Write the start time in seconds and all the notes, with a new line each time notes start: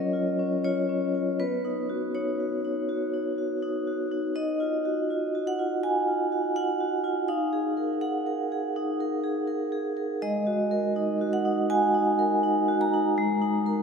Already playing: F#3 C#4 F4 A#4 C#5 D#5
0.13 F4
0.39 C#4
0.64 F4 C#5
0.89 C#4
1.15 F4
1.40 B3 B4
1.65 D#4
1.89 F#4
2.15 D#4 C#5
2.40 F#4
2.65 D#4
2.89 F#4
3.14 D#4
3.38 F#4
3.63 D#4
3.87 F#4
4.12 D#4
4.36 D#4 D#5
4.60 F4
4.85 F#4
5.10 F4
5.35 F#4
5.47 F#5
5.59 F4
5.83 F#4 G#5
6.08 F4
6.32 F#4
6.56 F4 F#5
6.80 F#4
7.04 F4
7.28 D#4 F5
7.53 G#4
7.77 A#4
8.01 G#4 F#5
8.26 A#4
8.52 G#4
8.76 D#4
9.00 A#4
9.24 G#4
9.47 A#4
9.72 G#4
9.97 A#4
10.22 G#3 D#5
10.47 F#4
10.71 A#4
10.96 D#4
11.21 F#4
11.33 F#5
11.45 D#4
11.70 F#4 G#5
11.94 D#4
12.19 A#4
12.43 D#4
12.68 F#4
12.81 A#5
12.93 D#4
13.18 G#3
13.42 D#4
13.66 A#4